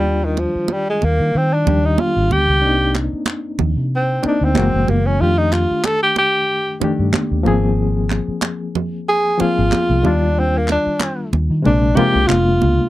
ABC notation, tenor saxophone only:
X:1
M:4/4
L:1/16
Q:"Swing 16ths" 1/4=93
K:Eb
V:1 name="Tenor saxophone"
G, E, F,2 G, A, B,2 C D2 E F2 G2- | G2 z6 C2 D C3 B, _D | F E F2 =A G G4 z6 | z8 A2 F4 D2 |
C B, D4 z2 D2 G2 F4 |]